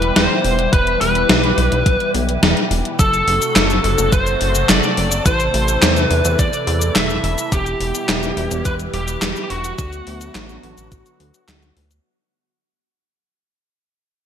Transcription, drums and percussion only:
0.02 closed hi-hat medium
0.16 snare loud
0.16 closed hi-hat medium
0.44 open hi-hat medium
0.59 closed hi-hat medium
0.73 kick loud
0.73 closed hi-hat medium
0.87 closed hi-hat soft
1.01 open hi-hat medium
1.15 closed hi-hat medium
1.29 snare loud
1.29 closed hi-hat medium
1.44 closed hi-hat soft
1.58 open hi-hat medium
1.72 closed hi-hat medium
1.86 kick loud
1.86 closed hi-hat medium
2.00 closed hi-hat soft
2.15 open hi-hat medium
2.29 closed hi-hat medium
2.43 snare loud
2.43 closed hi-hat medium
2.57 closed hi-hat soft
2.71 open hi-hat medium
2.85 closed hi-hat medium
2.99 kick loud
2.99 closed hi-hat medium
2.99 cabasa soft
3.14 closed hi-hat soft
3.14 cabasa soft
3.28 open hi-hat medium
3.42 closed hi-hat soft
3.42 cabasa medium
3.56 snare loud
3.56 clap medium
3.56 closed hi-hat medium
3.56 cabasa medium
3.70 closed hi-hat soft
3.70 cabasa soft
3.84 open hi-hat medium
3.98 closed hi-hat medium
3.98 cabasa medium
4.12 kick loud
4.12 closed hi-hat medium
4.12 cabasa medium
4.27 closed hi-hat soft
4.27 cabasa soft
4.41 open hi-hat medium
4.55 closed hi-hat medium
4.55 cabasa medium
4.69 snare loud
4.69 clap medium
4.69 closed hi-hat medium
4.69 cabasa medium
4.83 cabasa soft
4.97 open hi-hat medium
5.12 closed hi-hat medium
5.12 cabasa medium
5.26 kick loud
5.26 closed hi-hat medium
5.26 cabasa medium
5.40 closed hi-hat soft
5.40 cabasa soft
5.54 open hi-hat medium
5.68 closed hi-hat soft
5.68 cabasa medium
5.82 snare loud
5.82 clap loud
5.82 closed hi-hat medium
5.82 cabasa medium
5.96 closed hi-hat soft
5.96 cabasa soft
6.11 open hi-hat medium
6.25 closed hi-hat medium
6.25 cabasa medium
6.39 kick loud
6.39 closed hi-hat medium
6.39 cabasa medium
6.53 closed hi-hat soft
6.53 cabasa soft
6.67 open hi-hat medium
6.81 closed hi-hat soft
6.81 cabasa medium
6.96 snare loud
6.96 clap loud
6.96 closed hi-hat medium
6.96 cabasa medium
7.10 cabasa soft
7.24 open hi-hat medium
7.38 closed hi-hat soft
7.38 cabasa medium
7.52 kick loud
7.52 closed hi-hat medium
7.52 cabasa medium
7.66 closed hi-hat soft
7.66 cabasa soft
7.81 open hi-hat medium
7.95 closed hi-hat medium
7.95 cabasa medium
8.09 snare loud
8.09 clap loud
8.09 closed hi-hat medium
8.09 cabasa soft
8.23 closed hi-hat soft
8.23 cabasa soft
8.37 open hi-hat medium
8.51 closed hi-hat medium
8.51 cabasa medium
8.65 kick loud
8.65 closed hi-hat medium
8.65 cabasa medium
8.79 closed hi-hat soft
8.79 cabasa soft
8.94 open hi-hat medium
9.08 closed hi-hat medium
9.08 cabasa medium
9.22 snare loud
9.22 clap loud
9.22 closed hi-hat medium
9.22 cabasa medium
9.36 cabasa soft
9.50 open hi-hat medium
9.64 closed hi-hat medium
9.64 cabasa medium
9.79 kick loud
9.79 closed hi-hat medium
9.79 cabasa medium
9.93 closed hi-hat soft
9.93 cabasa soft
10.07 open hi-hat medium
10.21 closed hi-hat medium
10.21 cabasa medium
10.35 snare loud
10.35 clap loud
10.35 closed hi-hat medium
10.35 cabasa soft
10.49 closed hi-hat soft
10.49 cabasa soft
10.63 open hi-hat medium
10.78 closed hi-hat medium
10.78 cabasa medium
10.92 kick loud
10.92 closed hi-hat medium
10.92 cabasa soft
11.06 closed hi-hat soft
11.06 cabasa soft
11.20 open hi-hat medium
11.34 closed hi-hat medium
11.34 cabasa medium
11.48 snare loud
11.48 clap loud
11.48 closed hi-hat medium
11.48 cabasa medium
11.63 snare soft
11.63 closed hi-hat soft
11.63 cabasa soft
11.77 open hi-hat medium
11.91 closed hi-hat medium
11.91 cabasa medium

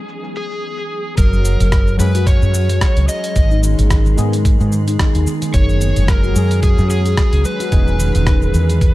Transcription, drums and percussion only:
0.09 shaker soft
0.24 shaker soft
0.36 shaker medium
0.51 shaker soft
1.17 kick loud
1.17 closed hi-hat medium
1.17 shaker soft
1.33 shaker soft
1.45 closed hi-hat soft
1.45 shaker medium
1.60 closed hi-hat soft
1.60 shaker soft
1.72 kick loud
1.72 cross-stick loud
1.72 closed hi-hat medium
1.72 shaker soft
1.88 shaker soft
1.99 closed hi-hat soft
1.99 shaker medium
2.15 closed hi-hat soft
2.15 shaker soft
2.27 kick loud
2.27 closed hi-hat medium
2.27 shaker soft
2.42 shaker soft
2.54 shaker medium
2.69 closed hi-hat soft
2.69 shaker soft
2.81 kick loud
2.81 cross-stick loud
2.81 closed hi-hat medium
2.81 shaker soft
2.97 closed hi-hat medium
2.97 shaker soft
3.08 shaker medium
3.24 closed hi-hat soft
3.24 shaker soft
3.36 kick loud
3.36 closed hi-hat medium
3.36 shaker soft
3.51 shaker soft
3.63 closed hi-hat soft
3.63 shaker medium
3.79 closed hi-hat soft
3.79 shaker soft
3.90 kick loud
3.90 cross-stick loud
3.90 closed hi-hat medium
3.90 shaker soft
4.06 shaker soft
4.18 closed hi-hat soft
4.18 shaker medium
4.33 closed hi-hat soft
4.33 shaker soft
4.45 kick loud
4.45 closed hi-hat medium
4.45 shaker soft
4.60 shaker soft
4.72 shaker medium
4.88 closed hi-hat soft
4.88 shaker soft
4.99 kick loud
4.99 cross-stick loud
4.99 closed hi-hat medium
4.99 shaker soft
5.15 closed hi-hat medium
5.15 shaker soft
5.27 shaker medium
5.42 closed hi-hat soft
5.42 shaker soft
5.54 kick loud
5.54 closed hi-hat medium
5.54 shaker soft
5.69 shaker soft
5.81 closed hi-hat soft
5.81 shaker medium
5.96 closed hi-hat soft
5.96 shaker soft
6.08 kick loud
6.08 cross-stick loud
6.08 closed hi-hat medium
6.08 shaker soft
6.24 shaker soft
6.36 closed hi-hat soft
6.36 shaker medium
6.51 closed hi-hat soft
6.51 shaker soft
6.63 kick loud
6.63 closed hi-hat medium
6.63 shaker soft
6.78 shaker soft
6.90 shaker medium
7.06 closed hi-hat soft
7.06 shaker soft
7.17 kick loud
7.17 cross-stick loud
7.17 closed hi-hat medium
7.17 shaker soft
7.33 closed hi-hat medium
7.33 shaker soft
7.45 shaker medium
7.60 closed hi-hat soft
7.60 shaker soft
7.72 kick loud
7.72 closed hi-hat medium
7.72 shaker soft
7.88 shaker soft
8.00 closed hi-hat soft
8.00 shaker medium
8.15 closed hi-hat soft
8.15 shaker soft
8.27 kick loud
8.27 cross-stick loud
8.27 closed hi-hat soft
8.27 shaker soft
8.42 shaker soft
8.54 closed hi-hat soft
8.54 shaker medium
8.70 closed hi-hat soft
8.70 shaker soft
8.81 kick loud
8.81 closed hi-hat medium
8.81 shaker soft

